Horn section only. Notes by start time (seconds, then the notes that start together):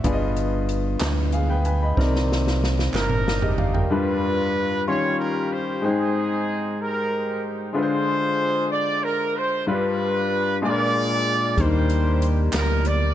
2.95 D4 D#4 A#4
3.93 D4 F4 B4
4.88 F4 G4 C#5
5.19 A#4
5.51 C5
5.84 C4 D#4 G#4
6.80 D#4 G4 A#4
7.76 F4 G#4 C5
8.72 D5
9.04 A#4
9.36 C5
9.68 D4 F4 B4
10.65 F4 G#4 D5
11.61 G4 C5
12.56 A#4
12.86 D5